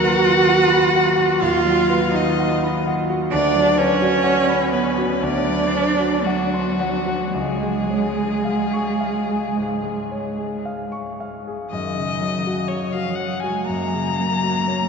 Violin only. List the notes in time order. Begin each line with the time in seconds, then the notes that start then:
Already playing: F#5
1.43 F5
2.15 D#5
3.33 D5
3.78 C#5
4.73 B4
5.23 D5
6.25 F#4
7.32 G#4
11.71 D#5
12.68 C#5
12.93 F5
13.15 F#5
13.40 G#5
13.65 A#5